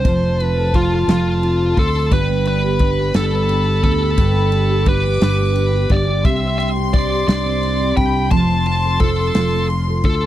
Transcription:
Already playing: steel-string acoustic guitar C3 C4 D4 C5, lead electric guitar C5
0.04 fretless electric bass F1, steel-string acoustic guitar F3 C4 F4 A4, violin section A5, kick, ride
0.24 steel-string acoustic guitar C4
0.40 steel-string acoustic guitar F4, lead electric guitar B4, ride
0.57 steel-string acoustic guitar A4
0.73 steel-string acoustic guitar F3 C4 F4 A4, lead electric guitar F4, kick, ride
0.90 steel-string acoustic guitar A4
1.08 fretless electric bass F1, steel-string acoustic guitar F3 C4 F4 A4, lead electric guitar F4, snare, ride
1.25 steel-string acoustic guitar C4
1.43 steel-string acoustic guitar F4, ride
1.61 steel-string acoustic guitar A4
1.76 fretless electric bass D2, steel-string acoustic guitar C4 F4 A4, lead electric guitar A4, violin section C6, kick, ride
1.94 steel-string acoustic guitar A4
2.11 fretless electric bass G1, steel-string acoustic guitar G2 D3 G3 B3 D4 G4, lead electric guitar B4, violin section B5, kick, ride
2.29 steel-string acoustic guitar B3
2.45 steel-string acoustic guitar D4, lead electric guitar B4, ride
2.64 steel-string acoustic guitar G4
2.79 steel-string acoustic guitar G3 B3 D4 G4, kick, ride
2.99 steel-string acoustic guitar G4
3.14 fretless electric bass G1, steel-string acoustic guitar G2 D3 G3 B3 D4 G4, lead electric guitar A4, snare, ride
3.32 steel-string acoustic guitar B3
3.49 steel-string acoustic guitar D4, ride
3.66 steel-string acoustic guitar G4
3.83 fretless electric bass D2, steel-string acoustic guitar G3 B3 D4 G4, lead electric guitar A4, kick, ride
4.01 steel-string acoustic guitar G4
4.17 fretless electric bass G1, steel-string acoustic guitar G2 D3 G3 B3 D4 G4, kick, ride
4.35 steel-string acoustic guitar B3
4.52 steel-string acoustic guitar D4, ride
4.69 steel-string acoustic guitar G4
4.85 steel-string acoustic guitar G3 B3 D4 G4, lead electric guitar B4, violin section D6, kick, ride
5.04 steel-string acoustic guitar G4
5.20 fretless electric bass G1, steel-string acoustic guitar G2 D3 G3 B3 D4 G4, lead electric guitar B4, snare, ride
5.39 steel-string acoustic guitar B3
5.56 steel-string acoustic guitar D4, ride
5.73 steel-string acoustic guitar G4
5.90 fretless electric bass G1, steel-string acoustic guitar G3 B3 D4 G4, lead electric guitar D5, kick, ride
6.06 steel-string acoustic guitar G4
6.23 fretless electric bass C2, steel-string acoustic guitar C3 G3 C4 D4 G4, lead electric guitar E5, violin section C6, kick, ride
6.42 steel-string acoustic guitar C4
6.58 steel-string acoustic guitar D4, lead electric guitar E5, ride
6.77 steel-string acoustic guitar G4
6.93 steel-string acoustic guitar G3 C4 D4 G4, lead electric guitar D5, kick, ride
7.11 steel-string acoustic guitar G4
7.28 fretless electric bass C2, steel-string acoustic guitar C3 G3 C4 D4 G4, lead electric guitar D5, snare, ride
7.45 steel-string acoustic guitar C4
7.63 steel-string acoustic guitar D4, ride
7.81 steel-string acoustic guitar G4
7.97 fretless electric bass C2, steel-string acoustic guitar C4 D4 G4, lead electric guitar G5, violin section B5, kick, ride
8.15 steel-string acoustic guitar G4
8.31 fretless electric bass F1, steel-string acoustic guitar F3 C4 F4 A4, lead electric guitar A5, violin section C6, kick, ride
8.49 steel-string acoustic guitar C4
8.66 steel-string acoustic guitar F4, lead electric guitar A5, ride
8.84 steel-string acoustic guitar A4
9.00 steel-string acoustic guitar F3 C4 F4 A4, lead electric guitar A4, kick, ride
9.19 steel-string acoustic guitar A4
9.35 fretless electric bass F1, steel-string acoustic guitar F3 C4 F4 A4, snare, ride
9.52 steel-string acoustic guitar C4
9.70 steel-string acoustic guitar F4, ride
9.88 steel-string acoustic guitar A4
10.04 fretless electric bass D2, steel-string acoustic guitar C4 F4 A4, lead electric guitar A4, kick, ride
10.22 steel-string acoustic guitar A4

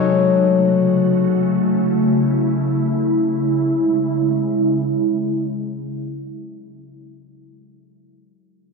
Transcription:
Already playing: ambient pad C#3 A3 F#4, harp F#3 F#4 A4 C#5
1.46 ambient pad E4
3.07 ambient pad C#3 G#3 E4

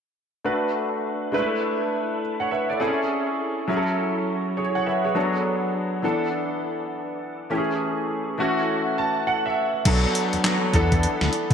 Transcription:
0.44 grand piano A3 D4 F#4 B4
1.32 grand piano G#3 D4 E4 B4
1.39 grand piano A3
2.40 grand piano C#5 F#5
2.51 grand piano B4 E5
2.70 grand piano A4 D5
2.80 grand piano C4 E4 G#4 A4
2.87 grand piano C#4
3.68 grand piano F#3 C#4 E4 G#4
3.76 grand piano A4
4.57 grand piano G#4 C#5
4.75 grand piano C#5 F#5
4.86 grand piano B4 E5
5.04 grand piano G#4 C#5
5.15 grand piano F#3 B3 D4 A4
6.02 grand piano E3 B3 D4 A4
7.50 grand piano E3 A3 C#4 G4
7.58 grand piano G#4
8.38 grand piano E3 A3 C#4 F#4
8.98 grand piano A5
9.27 grand piano F#5
9.46 grand piano E5
9.85 analog synth bass B1, grand piano F#3 B3 D4 A4, kick, closed hi-hat, crash
10.15 closed hi-hat
10.33 analog synth bass E2, closed hi-hat
10.44 grand piano F#3 B3 D4 A4, snare, clap, closed hi-hat
10.73 analog synth bass E2, grand piano E3 B3 D4 A4, kick, closed hi-hat
10.92 kick, closed hi-hat
11.03 closed hi-hat
11.21 analog synth bass D2, snare
11.33 closed hi-hat
11.51 analog synth bass B1, kick, closed hi-hat

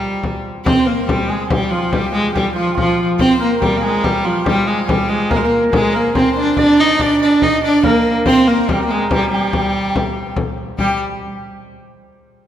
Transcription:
Already playing: viola da gamba G3, hammered dulcimer F4 G4 A#4 C5 D5, fiddle G4
0.02 frame drum
0.23 frame drum
0.45 frame drum
0.64 viola da gamba C4, fiddle C5, hammered dulcimer C5, frame drum
0.85 viola da gamba A#3, fiddle A#4, frame drum
1.07 viola da gamba G3, fiddle G4, hammered dulcimer G4, frame drum
1.28 viola da gamba G#3, hammered dulcimer G#4, fiddle G#4
1.49 viola da gamba G3, fiddle G4, hammered dulcimer G4, frame drum
1.70 viola da gamba F3, fiddle F4, hammered dulcimer F4
1.92 viola da gamba G3, fiddle G4, hammered dulcimer G4, frame drum
2.13 viola da gamba G#3, hammered dulcimer G#4, frame drum
2.34 viola da gamba G3, hammered dulcimer G4, fiddle G4, frame drum
2.55 viola da gamba F3, fiddle F4, hammered dulcimer F4
2.70 hammered dulcimer G4
2.75 viola da gamba F3, hammered dulcimer F4, fiddle F4, frame drum
3.18 viola da gamba C4, fiddle C5, hammered dulcimer C5, frame drum
3.40 viola da gamba A#3, hammered dulcimer A#4, frame drum
3.60 viola da gamba G3, hammered dulcimer G4, fiddle G4, frame drum
3.77 viola da gamba A#3, hammered dulcimer G#4
3.83 viola da gamba G#3, fiddle G#4
4.03 viola da gamba G3, hammered dulcimer G4, fiddle G4, frame drum
4.25 viola da gamba F3, hammered dulcimer F4
4.44 viola da gamba G3, hammered dulcimer G4, fiddle G4, frame drum
4.66 viola da gamba G#3, fiddle G#4, hammered dulcimer G#4, frame drum
4.87 viola da gamba G3, hammered dulcimer G4, fiddle G4, frame drum
5.09 viola da gamba G#3, hammered dulcimer G#4, frame drum
5.30 viola da gamba A#3, hammered dulcimer A#4, fiddle A#4, frame drum
5.36 viola da gamba G#3, hammered dulcimer C5
5.42 viola da gamba A#3, hammered dulcimer A#4, fiddle A#4
5.72 viola da gamba G#3, hammered dulcimer G#4, fiddle G#4, frame drum
5.93 viola da gamba A#3, fiddle A#4, hammered dulcimer A#4, frame drum
6.14 viola da gamba C4, fiddle C5, hammered dulcimer C5, frame drum
6.37 viola da gamba D4, hammered dulcimer D5
6.57 viola da gamba D4, fiddle D5, hammered dulcimer D5, frame drum
6.80 viola da gamba D#4, hammered dulcimer D#5
6.99 viola da gamba D4, hammered dulcimer D5, fiddle D5, frame drum
7.21 viola da gamba D4, fiddle D5, hammered dulcimer D5, frame drum
7.42 viola da gamba D#4, fiddle D#5, hammered dulcimer D#5, frame drum
7.63 viola da gamba D4, fiddle D5, hammered dulcimer D5
7.83 viola da gamba A#3, fiddle A#4, hammered dulcimer A#4, frame drum
8.26 viola da gamba C4, fiddle C5, hammered dulcimer C5, frame drum
8.47 viola da gamba A#3, fiddle A#4, hammered dulcimer A#4, frame drum
8.69 viola da gamba G3, fiddle G4, hammered dulcimer G4, frame drum
8.84 viola da gamba A#3
8.90 viola da gamba G#3, fiddle G#4, hammered dulcimer G#4
9.10 viola da gamba G3, fiddle G4, hammered dulcimer G4, frame drum
9.17 hammered dulcimer G4
9.24 hammered dulcimer G4
9.32 viola da gamba G3, fiddle G4, hammered dulcimer G4
9.53 frame drum
9.95 frame drum
10.16 frame drum
10.36 frame drum
10.58 frame drum
10.78 viola da gamba G3, fiddle G4, hammered dulcimer G4, frame drum

